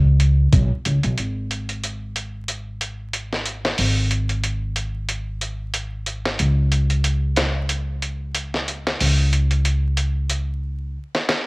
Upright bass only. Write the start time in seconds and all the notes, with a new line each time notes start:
Already playing: C#2
0.53 B1
0.86 C#2
1.04 B1
1.19 G#1
3.79 G#1
6.40 C#2
9.01 C#2